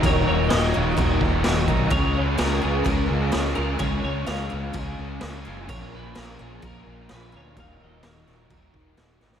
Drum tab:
CC |x---x---x---x---|x---x---x---x---|x---x---x---x---|x---x---x---x---|
SD |----o-------o---|----o-------o---|----o-------o---|----o-------o---|
BD |o-------o-o---o-|o-------o-------|o-------o-------|o-------o-------|

CC |x---x---x---x---|
SD |----o-o-----o-oo|
BD |o-------o-o-----|